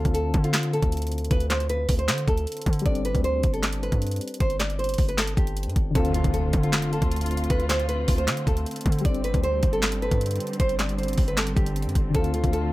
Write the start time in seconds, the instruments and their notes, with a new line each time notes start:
Already playing: synth keys D3 C4 F4, nylon-string guitar F4
0.05 808-style bass D2, kick, closed hi-hat
0.14 nylon-string guitar A4, closed hi-hat
0.34 808-style bass D3, kick, closed hi-hat
0.44 nylon-string guitar F4, closed hi-hat
0.54 snare, clap, closed hi-hat
0.63 closed hi-hat
0.73 nylon-string guitar A4, closed hi-hat
0.83 808-style bass D2, kick, closed hi-hat
0.92 closed hi-hat
0.97 closed hi-hat
1.02 closed hi-hat
1.07 closed hi-hat
1.12 closed hi-hat
1.18 closed hi-hat
1.25 closed hi-hat
1.31 808-style bass D2, nylon-string guitar B4, kick, closed hi-hat
1.40 closed hi-hat
1.50 nylon-string guitar C5, snare, clap, closed hi-hat
1.60 closed hi-hat
1.69 nylon-string guitar B4, closed hi-hat
1.89 808-style bass D2, kick, open hi-hat
1.99 nylon-string guitar C5, closed hi-hat
2.08 808-style bass D3, snare, clap, closed hi-hat
2.18 closed hi-hat
2.28 808-style bass D2, nylon-string guitar A4, kick, closed hi-hat
2.37 closed hi-hat
2.47 closed hi-hat
2.52 closed hi-hat
2.57 closed hi-hat
2.62 closed hi-hat
2.66 808-style bass D3, kick, closed hi-hat
2.73 closed hi-hat
2.79 synth keys G3, closed hi-hat
2.86 808-style bass G1, synth keys D4, nylon-string guitar D5, kick, closed hi-hat
2.90 synth keys C4
2.95 closed hi-hat
3.05 nylon-string guitar B4, closed hi-hat
3.15 808-style bass D2, kick, closed hi-hat
3.24 nylon-string guitar C5, closed hi-hat
3.43 808-style bass G1, kick, closed hi-hat
3.53 nylon-string guitar A4, closed hi-hat
3.63 snare, clap, closed hi-hat
3.73 closed hi-hat
3.83 nylon-string guitar B4, closed hi-hat
3.92 808-style bass G2, kick, closed hi-hat
4.02 closed hi-hat
4.07 closed hi-hat
4.11 closed hi-hat
4.16 closed hi-hat
4.21 closed hi-hat
4.28 closed hi-hat
4.34 closed hi-hat
4.40 808-style bass G1, nylon-string guitar C5, kick, closed hi-hat
4.50 closed hi-hat
4.60 nylon-string guitar D5, snare, clap, closed hi-hat
4.70 closed hi-hat
4.79 nylon-string guitar C5, closed hi-hat
4.84 closed hi-hat
4.89 closed hi-hat
4.94 closed hi-hat
4.98 808-style bass G1, kick, open hi-hat
5.09 nylon-string guitar B4, closed hi-hat
5.18 nylon-string guitar A4, snare, clap, closed hi-hat
5.27 closed hi-hat
5.37 808-style bass G1, nylon-string guitar G4, kick, closed hi-hat
5.47 closed hi-hat
5.57 closed hi-hat
5.63 808-style bass G2, closed hi-hat
5.70 closed hi-hat
5.76 808-style bass G1, kick, closed hi-hat
5.91 synth keys D3
5.95 808-style bass D2, string section D3 A3 C4 F4, synth keys C4, nylon-string guitar A4, kick, closed hi-hat, impact
5.99 synth keys F4
6.05 closed hi-hat
6.14 nylon-string guitar F4, closed hi-hat
6.24 808-style bass D2, kick, closed hi-hat
6.33 nylon-string guitar A4, closed hi-hat
6.53 808-style bass D3, kick, closed hi-hat
6.63 nylon-string guitar F4, closed hi-hat
6.73 snare, clap, closed hi-hat
6.82 closed hi-hat
6.92 nylon-string guitar A4, closed hi-hat
7.02 808-style bass D2, kick, closed hi-hat
7.12 closed hi-hat
7.16 closed hi-hat
7.21 closed hi-hat
7.26 closed hi-hat
7.31 closed hi-hat
7.37 closed hi-hat
7.44 closed hi-hat
7.50 808-style bass D2, nylon-string guitar B4, kick, closed hi-hat
7.60 closed hi-hat
7.69 nylon-string guitar C5, snare, clap, closed hi-hat
7.80 closed hi-hat
7.89 nylon-string guitar B4, closed hi-hat
8.08 808-style bass D2, kick, open hi-hat
8.18 nylon-string guitar C5, closed hi-hat
8.28 808-style bass D3, snare, clap, closed hi-hat
8.37 closed hi-hat
8.47 808-style bass D2, nylon-string guitar A4, kick, closed hi-hat
8.57 closed hi-hat
8.66 closed hi-hat
8.71 closed hi-hat
8.76 closed hi-hat
8.81 closed hi-hat
8.86 808-style bass D3, kick, closed hi-hat
8.92 closed hi-hat
8.99 synth keys G3, closed hi-hat
9.05 808-style bass G1, string section D3 G3, synth keys D4, nylon-string guitar D5, kick, closed hi-hat
9.09 synth keys C4
9.14 closed hi-hat
9.24 nylon-string guitar B4, closed hi-hat
9.34 808-style bass D2, kick, closed hi-hat
9.44 nylon-string guitar C5, closed hi-hat
9.63 808-style bass G1, kick, closed hi-hat
9.73 nylon-string guitar A4, closed hi-hat
9.82 snare, clap, closed hi-hat
9.92 closed hi-hat
10.02 nylon-string guitar B4, closed hi-hat
10.11 808-style bass G2, kick, closed hi-hat
10.21 closed hi-hat
10.26 closed hi-hat
10.31 closed hi-hat
10.36 closed hi-hat
10.40 closed hi-hat
10.47 closed hi-hat
10.53 closed hi-hat
10.60 808-style bass G1, nylon-string guitar C5, kick, closed hi-hat
10.69 closed hi-hat
10.79 nylon-string guitar D5, snare, clap, closed hi-hat
10.89 closed hi-hat
10.98 nylon-string guitar C5, closed hi-hat
11.03 closed hi-hat
11.08 closed hi-hat
11.13 closed hi-hat
11.18 808-style bass G1, kick, open hi-hat
11.28 nylon-string guitar B4, closed hi-hat
11.37 nylon-string guitar A4, snare, clap, closed hi-hat
11.47 closed hi-hat
11.56 808-style bass G1, nylon-string guitar G4, kick, closed hi-hat
11.66 closed hi-hat
11.76 closed hi-hat
11.82 808-style bass G2, closed hi-hat
11.89 closed hi-hat
11.95 808-style bass G1, kick, closed hi-hat
12.10 synth keys D3
12.14 808-style bass D2, string section A3 F4, synth keys C4, nylon-string guitar A4, kick, closed hi-hat
12.18 synth keys F4
12.24 closed hi-hat
12.34 nylon-string guitar F4, closed hi-hat
12.44 808-style bass D2, kick, closed hi-hat
12.53 nylon-string guitar A4, closed hi-hat